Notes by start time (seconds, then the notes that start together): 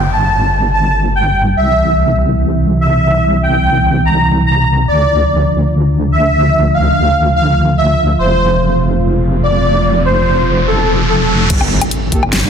Already playing: G1 D3 G3 A#3 F4, downlifter
0.12 A5
0.74 A5
1.15 G5
1.57 C2 C3 E3 E4 E5
2.81 E5
3.43 G5
4.05 A#5
4.46 A#5
4.88 D2 D3 F3 A3 F4 D5
6.12 E5
6.74 F5
7.36 F5
7.78 E5
8.19 F1 C3 A3 C5, riser
9.43 D5
10.05 C5
10.67 A4
11.09 A4
11.50 G1 D3 A3 A#3 G4, kick, closed hi-hat, crash, impact
11.61 low woodblock
11.81 closed hi-hat, low woodblock
11.91 closed hi-hat
12.12 A#3 G4 A4, kick, closed hi-hat
12.23 G1, low woodblock
12.33 snare, closed hi-hat
12.44 G2